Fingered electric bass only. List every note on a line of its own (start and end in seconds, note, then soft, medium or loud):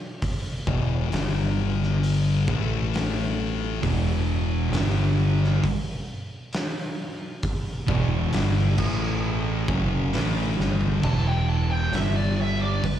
0.68 1.09 E1 medium
1.12 2.43 G1 medium
2.48 3.79 A1 medium
3.83 4.69 E1 loud
4.72 5.58 G1 medium
7.89 8.30 E1 loud
8.33 8.75 G1 medium
8.79 9.64 A1 medium
9.69 10.10 F#1 loud
10.13 10.55 A1 medium
10.58 11.00 G1 medium
11.04 11.89 E1 medium
11.92 12.79 G1 medium